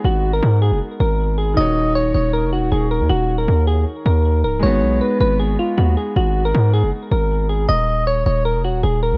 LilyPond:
<<
  \new Staff \with { instrumentName = "Synth keys" } { \time 4/4 \key ees \minor \tempo 4 = 157 ges'8. bes'8. aes'8 r8 bes'4 aes'8 | ees''4 des''8 des''8 bes'8 ges'8 aes'8 bes'8 | ges'8. bes'8. aes'8 r8 bes'4 bes'8 | des''4 ces''8 ces''8 aes'8 f'8 ges'8 aes'8 |
ges'8. bes'8. aes'8 r8 bes'4 aes'8 | ees''4 des''8 des''8 bes'8 ges'8 aes'8 bes'8 | }
  \new Staff \with { instrumentName = "Grand piano" } { \time 4/4 \key ees \minor <aes ces' ees' ges'>1 | <ees ees' ges' des''>1~ | <ees ees' ges' des''>1 | <aes ces' ees' ges'>1~ |
<aes ces' ees' ges'>1 | r1 | }
  \new Staff \with { instrumentName = "808-style bass" } { \clef bass \time 4/4 \key ees \minor aes,,4 aes,8. ges,,16 r8 aes,,4. | ees,,4. ees,,8. f,,16. ees,,16. ees,,8. ees,16 | ees,,4 ees,4 r8 ees,4 des,,8 | aes,,8 ces,8 r8 aes,,4 r8 ees,8 r8 |
aes,,4 aes,8. ges,,16 r8 aes,,4. | ees,,4. ees,,8. f,,16. ees,,16. ees,,8. ees,16 | }
>>